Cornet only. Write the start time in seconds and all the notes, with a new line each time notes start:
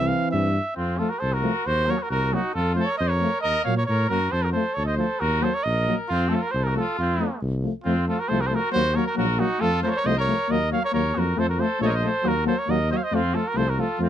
0.07 F5
0.31 E5
0.77 F4
0.98 A4
1.10 A#4
1.19 C5
1.34 A#4
1.66 C5
1.90 C#5
2.02 A#4
2.11 A#4
2.33 F#4
2.54 A4
2.75 C5
2.85 C#5
2.98 D#5
3.08 C#5
3.41 D#5
3.64 F5
3.77 C#5
3.86 C#5
4.09 A#4
4.31 C5
4.42 A#4
4.52 C5
4.74 C#5
4.86 D#5
4.97 C5
5.19 A#4
5.42 C5
5.54 C#5
5.63 D#5
6.09 F4
6.29 A4
6.42 A#4
6.51 C5
6.63 A#4
6.76 A4
6.98 F4
7.84 F4
8.08 A4
8.20 A#4
8.28 C5
8.40 A#4
8.46 C5
8.54 A#4
8.72 C5
8.96 C#5
9.06 A#4
9.18 A#4
9.40 F#4
9.61 A4
9.83 C5
9.88 C5 C#5
9.96 C#5
10.06 D#5
10.20 C#5
10.51 D#5
10.73 F5
10.85 C#5
10.94 C#5
11.19 A#4
11.39 C5
11.50 A#4
11.60 C5
11.82 C#5 D#5
11.87 C#5
11.92 D#5
12.05 C5
12.28 A#4
12.47 C5
12.59 C#5
12.70 D#5
12.92 D#5
12.97 F5
13.04 D#5
13.15 F4
13.34 A4
13.48 A#4
13.57 C5
13.70 A#4
13.80 A4
14.02 F4